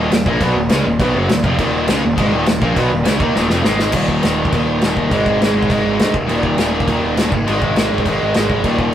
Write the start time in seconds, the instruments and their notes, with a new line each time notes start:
Already playing: picked electric bass D#1, distorted electric guitar D#2 A#2 D#3
0.11 picked electric bass D#1, distorted electric guitar D#2 A#2, snare, crash
0.26 picked electric bass A#1, distorted electric guitar A#2 F3 A#3, kick
0.41 picked electric bass B1, distorted electric guitar B2 F#3 B3, kick, crash
0.54 picked electric bass D#1, distorted electric guitar D#2 A#2
0.69 picked electric bass C#2, distorted electric guitar C#3 G#3 C#4, snare, crash
0.85 picked electric bass D#1, distorted electric guitar D#2 A#2
0.99 picked electric bass B1, distorted electric guitar B2 F#3 B3, kick, crash
1.14 picked electric bass F#1, distorted electric guitar F#2 C#3 F#3
1.29 picked electric bass D#1, distorted electric guitar D#2 A#2, snare, crash
1.43 picked electric bass F1, distorted electric guitar F2 C3 F3, kick
1.58 picked electric bass D#1, distorted electric guitar D#2 A#2 D#3, kick, crash
1.86 picked electric bass C#2, distorted electric guitar C#3 G#3 C#4, snare, crash
2.02 picked electric bass D#1, distorted electric guitar D#2 A#2
2.16 picked electric bass G#1, distorted electric guitar G#2 D#3 G#3, kick, crash
2.30 picked electric bass D#1, distorted electric guitar D#2 A#2 D#3
2.46 picked electric bass D#1, distorted electric guitar D#2 A#2, snare, crash
2.61 picked electric bass A#1, distorted electric guitar A#2 F3 A#3, kick
2.75 picked electric bass B1, distorted electric guitar B2 F#3 B3, kick, crash
2.90 picked electric bass D#1, distorted electric guitar D#2 A#2
3.05 picked electric bass C#2, distorted electric guitar C#3 G#3 C#4, snare, crash
3.18 picked electric bass D#2, distorted electric guitar D#3 A#3 D#4, kick
3.33 picked electric bass D#1, distorted electric guitar D#2 A#2 D#3, snare
3.47 picked electric bass F1, distorted electric guitar F2 C3 F3, snare
3.62 picked electric bass G#1, distorted electric guitar G#2 D#3 G#3, snare
3.79 snare
3.92 picked electric bass D#1, distorted electric guitar D#2 A#2 D#3, kick, crash
4.08 kick
4.21 picked electric bass D#1, distorted electric guitar D#2 A#2 D#3, snare, crash
4.45 kick
4.50 distorted electric guitar D#2 A#2 D#3, picked electric bass D#2, kick, crash
4.68 picked electric bass D#1
4.81 picked electric bass D#1, distorted electric guitar D#2 A#2 D#3, snare, crash
4.97 kick
5.11 picked electric bass G#1, distorted electric guitar G#2 D#3 G#3, kick, crash
5.26 picked electric bass G#1, kick
5.40 picked electric bass G#1, distorted electric guitar G#2 D#3 G#3, snare, crash
5.55 picked electric bass G#1
5.63 kick
5.69 picked electric bass G#1, distorted electric guitar G#2 D#3 G#3, kick, crash
5.85 picked electric bass G#1
5.98 picked electric bass D2, distorted electric guitar G#2 D#3 G#3, snare, crash
6.13 picked electric bass D#1, distorted electric guitar D#2 A#2 D#3, kick
6.27 picked electric bass D#1, distorted electric guitar D#2 A#2 D#3, crash
6.43 kick
6.57 picked electric bass D#1, distorted electric guitar D#2 A#2 D#3, snare, crash
6.80 kick
6.88 picked electric bass D#2, distorted electric guitar D#2 A#2 D#3, kick, crash
7.03 picked electric bass D#1
7.17 picked electric bass D#1, distorted electric guitar D#2 A#2 D#3, snare, crash
7.32 picked electric bass G#1, distorted electric guitar G#2 D#3 G#3, kick
7.47 picked electric bass G#1, distorted electric guitar G#2 D#3 G#3, crash
7.62 picked electric bass G#1, kick
7.75 picked electric bass G#1, distorted electric guitar G#2 D#3 G#3, snare, crash
7.93 picked electric bass G#1
7.98 kick
8.04 picked electric bass G#1, distorted electric guitar G#2 D#3 G#3, kick, crash
8.22 picked electric bass G#1
8.34 picked electric bass G#1, distorted electric guitar G#2 D#3 G#3, snare, crash
8.50 picked electric bass G#1, kick
8.64 picked electric bass D#1, distorted electric guitar D#2 A#2 D#3, kick, crash
8.79 kick